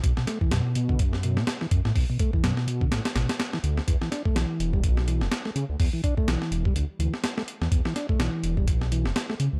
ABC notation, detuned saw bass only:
X:1
M:4/4
L:1/16
Q:"Swing 16ths" 1/4=125
K:Edor
V:1 name="Detuned saw bass" clef=bass
B,,, z3 F,, z B,,2 F,,3 B,, z2 F,, A,, | B,,, z2 F,, F,, z B,, z A,, z A,,, z3 D,, z | E,, z3 B,,, z E,,,2 B,,,3 E,,, z2 C, D,, | E,, z2 B,,, B,,, z E,,, z D,, z D,, z4 E,, |
E,, z3 B,,, z E,,,2 B,,,3 E,,, z2 C, D,, |]